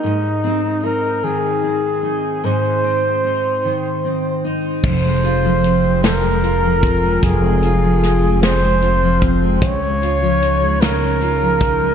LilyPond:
<<
  \new Staff \with { instrumentName = "Flugelhorn" } { \time 6/8 \key f \minor \tempo 4. = 50 ees'4 bes'8 aes'4. | c''2~ c''8 r8 | c''4. bes'4. | aes'4. c''4 r8 |
des''4. bes'4. | }
  \new Staff \with { instrumentName = "Steel-string acoustic guitar" } { \clef bass \time 6/8 \key f \minor <aes, ees'>8 c'8 ees'8 ees8 c'8 ees'8 | <aes, ees'>8 c'8 ees'8 ees8 c'8 ees'8 | f,16 aes16 f'16 f16 c'16 aes16 f,16 aes16 f'16 f16 c'16 aes16 | f,16 aes16 f'16 f16 c'16 aes16 f,16 aes16 f'16 f16 c'16 aes16 |
des16 aes16 f'16 f16 ees'16 aes16 des16 aes16 f'16 f16 ees'16 aes16 | }
  \new Staff \with { instrumentName = "Upright bass" } { \clef bass \time 6/8 \key f \minor r2. | r2. | f,,2. | f,,2. |
des,2. | }
  \new DrumStaff \with { instrumentName = "Drums" } \drummode { \time 6/8 r4. r4. | r4. r4. | <cymc bd>8 hh8 hh8 <hh sn>8 hh8 <hh bd>8 | <hh bd>8 hh8 <hh sn>8 <hh sn>8 hh8 <hh bd>8 |
<hh bd>8 hh8 hh8 <hh sn>8 hh8 <hh bd>8 | }
>>